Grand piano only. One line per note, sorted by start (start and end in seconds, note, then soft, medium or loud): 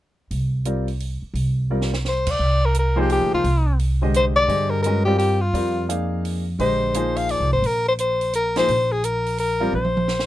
0.65 0.85 G3 soft
0.65 0.85 C4 soft
0.65 0.86 F4 soft
0.65 0.86 A#4 soft
0.65 0.86 D5 soft
1.70 1.90 G3 soft
1.70 1.90 C4 soft
1.70 1.90 F4 soft
1.70 1.91 A#4 soft
1.70 1.91 D5 soft
2.96 3.42 F3 medium
2.96 3.42 A#3 medium
2.96 3.42 D#4 medium
2.96 3.42 G#4 medium
2.96 3.42 C5 medium
4.02 4.47 D3 soft
4.02 4.47 G#3 medium
4.02 4.46 G4 soft
4.02 4.47 C5 soft
4.02 4.47 D#5 medium
4.48 4.83 D3 soft
4.48 4.82 G4 soft
4.48 4.82 G#4 medium
4.48 4.83 C5 soft
4.48 4.83 D#5 medium
4.85 5.05 G#3 soft
4.85 5.05 C#4 soft
4.85 5.05 F#4 soft
4.85 5.05 B4 soft
4.85 5.05 D#5 medium
5.06 5.37 G3 medium
5.06 5.37 C4 medium
5.06 5.37 F4 soft
5.06 5.37 A#4 soft
5.06 5.38 D5 medium
5.54 5.88 G3 soft
5.54 5.88 C4 soft
5.54 5.88 F4 soft
5.54 5.88 A#4 soft
5.54 5.88 D5 soft
5.89 6.42 A#3 soft
5.89 6.41 D#4 soft
5.89 6.42 G#4 soft
5.89 6.42 D5 soft
5.89 6.42 F5 soft
6.59 6.93 D3 soft
6.59 6.93 G#3 soft
6.59 6.93 G4 soft
6.59 6.93 C5 soft
6.59 6.93 D#5 medium
6.95 7.47 F3 medium
6.95 7.47 A#3 soft
6.95 7.47 D#4 soft
6.95 7.47 G#4 soft
6.95 7.47 C5 medium
8.56 8.67 F3 medium
8.56 8.67 A#3 medium
8.56 8.67 D#4 medium
8.56 8.67 G#4 medium
8.56 8.67 C5 medium
9.60 9.72 G3 medium
9.60 9.72 C4 medium
9.60 9.72 F4 medium
9.60 9.72 A#4 medium
9.60 9.72 D5 medium